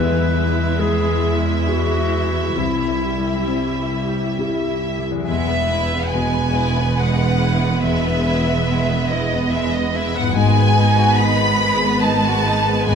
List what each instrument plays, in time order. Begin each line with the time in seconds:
Already playing: grand piano E2, cello section E2, harp E3 E4 E5, viola section G#3 E4, clarinet B4, violin section E5
0.23 harp G#3
0.52 harp E4
0.79 grand piano G#3, clarinet G#4, harp B4
1.09 harp G#4
1.67 grand piano E4 G#4, clarinet F#4, harp G#4
2.27 harp E4
2.56 grand piano C2, cello section C2, harp C3, viola section G3, clarinet E4
2.88 harp C4
3.18 harp G3
3.47 grand piano C4, harp E4
4.08 harp G4
4.39 grand piano E4 G4
4.68 harp E4
4.99 harp G3
5.11 harp E2
5.15 harp G#3
5.20 harp E4
5.24 double bass section E1, cello section E2, grand piano E2, violin section G#3 B4 E5, harp G#5
5.29 viola section G#3 B3
5.50 violin section B3
5.70 violin section E4
5.93 violin section B3
6.12 grand piano B2, violin section G#3 G#5
6.34 violin section B3
6.54 violin section E4
6.76 violin section B3
6.98 violin section G#3 F#5
7.19 violin section B3
7.41 violin section E4
7.63 violin section B3
7.83 grand piano E2, violin section G#3 E5
8.05 violin section B3
8.26 violin section E4
8.47 violin section B3
8.69 violin section G#3, grand piano B3
8.91 violin section B3
9.11 violin section E4 D#5
9.33 violin section B3
9.53 violin section G#3 E5
9.74 violin section B3 D#5
9.94 violin section E4 E5
10.14 violin section B3 F#5
10.19 harp G#2
10.23 harp B3
10.28 harp F#4
10.32 violin section G#3 B4, harp D#5
10.37 double bass section G#1, grand piano G#2, cello section G#2, viola section G#3 B3, violin section G#5
10.56 violin section B3
10.78 violin section D#4
10.98 violin section F#4
11.19 grand piano D#3, violin section D#4 B5
11.40 violin section B3
11.62 violin section G#3
11.85 violin section B3
12.03 violin section D#4 A5
12.25 violin section F#4
12.45 violin section D#4
12.67 violin section B3
12.86 grand piano G#2, violin section G#3 G#5